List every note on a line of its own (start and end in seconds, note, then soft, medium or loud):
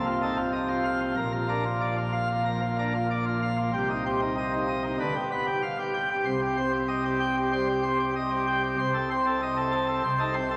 0.00 1.14 C2 medium
0.00 1.14 C3 medium
0.06 0.21 F4 medium
0.22 0.37 D#4 medium
0.22 0.37 A4 medium
0.37 0.52 F4 medium
0.53 0.68 D#5 medium
0.69 0.84 F4 medium
0.85 1.00 F5 medium
1.00 1.15 F4 medium
1.16 3.68 A#1 medium
1.16 3.68 A#2 medium
1.16 1.32 A#4 medium
1.32 1.47 F4 medium
1.49 1.64 D4 medium
1.49 1.64 A#4 medium
1.65 1.80 F4 medium
1.81 1.96 D5 medium
1.97 2.12 F4 medium
2.13 2.28 F5 medium
2.29 2.44 F4 medium
2.45 2.60 F3 medium
2.45 2.60 A#4 medium
2.62 2.76 F4 medium
2.79 2.93 D4 medium
2.79 2.93 A#4 medium
2.94 3.08 F4 medium
3.11 3.24 D5 medium
3.26 3.40 F4 medium
3.42 3.56 F5 medium
3.57 3.71 F4 medium
3.73 4.96 C2 medium
3.73 4.96 C3 medium
3.73 3.88 G4 medium
3.90 4.04 D#4 medium
4.06 4.20 C4 medium
4.06 4.20 G4 medium
4.22 4.35 D#4 medium
4.38 4.51 D#5 medium
4.53 4.67 D#4 medium
4.68 4.82 D#5 medium
4.84 4.98 D#4 medium
5.00 5.13 D2 medium
5.00 5.14 D3 medium
5.00 5.14 B4 medium
5.16 5.30 G4 medium
5.31 5.45 B3 medium
5.31 5.46 B4 medium
5.47 5.61 G4 medium
5.63 5.77 F5 medium
5.79 5.93 G4 medium
5.94 6.09 G5 medium
6.10 6.24 G4 medium
6.25 8.75 C2 medium
6.25 8.75 C3 medium
6.25 6.40 C5 medium
6.41 6.56 G4 medium
6.57 6.72 C4 medium
6.57 6.72 C5 medium
6.73 6.88 G4 medium
6.88 7.03 D#5 medium
7.05 7.20 G4 medium
7.21 7.35 G5 loud
7.37 7.51 G4 medium
7.53 7.67 G3 medium
7.53 7.67 C5 medium
7.69 7.83 G4 medium
7.83 7.98 C4 medium
7.83 7.98 C5 medium
7.99 8.14 G4 medium
8.16 8.30 D#5 medium
8.31 8.46 G4 medium
8.47 8.62 G5 medium
8.63 8.77 G4 medium
8.79 10.02 C2 medium
8.79 10.02 C3 medium
8.79 8.93 C5 medium
8.94 9.09 A4 medium
9.11 9.25 C4 medium
9.11 9.25 C5 medium
9.26 9.41 A4 medium
9.42 9.56 D#5 medium
9.57 9.72 A4 medium
9.72 9.87 A5 loud
9.88 10.03 A4 medium
10.04 10.57 C2 medium
10.04 10.57 C3 medium
10.04 10.18 C5 medium
10.19 10.34 D#4 medium
10.19 10.34 A4 medium
10.34 10.49 C4 medium
10.34 10.49 C5 medium
10.51 10.57 A4 medium